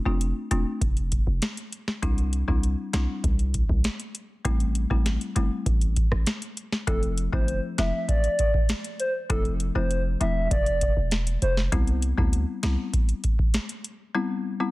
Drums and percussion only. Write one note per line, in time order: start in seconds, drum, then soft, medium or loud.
0.21 closed hi-hat medium
0.51 closed hi-hat medium
0.81 kick loud
0.81 closed hi-hat medium
0.97 closed hi-hat medium
1.12 kick medium
1.12 closed hi-hat medium
1.42 snare loud
1.42 closed hi-hat medium
1.57 closed hi-hat medium
1.72 closed hi-hat medium
1.88 snare medium
2.03 kick loud
2.03 closed hi-hat medium
2.18 closed hi-hat soft
2.33 closed hi-hat medium
2.48 kick medium
2.63 closed hi-hat medium
2.93 snare loud
2.93 closed hi-hat medium
3.24 kick loud
3.24 closed hi-hat medium
3.39 closed hi-hat medium
3.54 kick medium
3.54 closed hi-hat medium
3.69 kick medium
3.84 snare loud
3.84 closed hi-hat medium
4.00 closed hi-hat medium
4.15 closed hi-hat medium
4.45 kick loud
4.45 closed hi-hat medium
4.60 closed hi-hat soft
4.75 closed hi-hat medium
4.91 kick medium
5.06 snare medium
5.06 closed hi-hat medium
5.21 closed hi-hat soft
5.36 closed hi-hat medium
5.66 kick loud
5.66 closed hi-hat medium
5.81 closed hi-hat medium
5.96 kick medium
5.96 closed hi-hat medium
6.12 cross-stick medium
6.27 snare loud
6.27 closed hi-hat medium
6.42 closed hi-hat medium
6.57 closed hi-hat medium
6.72 snare medium
6.87 kick loud
6.87 closed hi-hat medium
7.03 closed hi-hat soft
7.18 closed hi-hat medium
7.33 kick medium
7.48 closed hi-hat medium
7.78 snare loud
7.78 closed hi-hat medium
8.09 kick loud
8.09 closed hi-hat medium
8.24 closed hi-hat medium
8.39 kick medium
8.39 closed hi-hat medium
8.54 kick loud
8.69 snare loud
8.69 closed hi-hat medium
8.84 closed hi-hat medium
9.00 closed hi-hat medium
9.30 kick loud
9.30 closed hi-hat medium
9.45 closed hi-hat soft
9.60 closed hi-hat medium
9.91 closed hi-hat medium
10.21 closed hi-hat medium
10.51 kick loud
10.51 closed hi-hat medium
10.66 closed hi-hat medium
10.81 kick medium
10.81 closed hi-hat medium
11.11 snare loud
11.11 closed hi-hat medium
11.27 closed hi-hat medium
11.42 closed hi-hat medium
11.57 snare medium
11.72 kick loud
11.72 closed hi-hat medium
11.87 closed hi-hat soft
12.02 closed hi-hat medium
12.18 kick loud
12.33 closed hi-hat medium
12.63 snare loud
12.63 closed hi-hat medium
12.94 kick loud
12.94 closed hi-hat medium
13.09 closed hi-hat soft
13.24 kick medium
13.24 closed hi-hat medium
13.39 kick medium
13.54 snare loud
13.54 closed hi-hat medium
13.69 closed hi-hat medium
13.84 closed hi-hat medium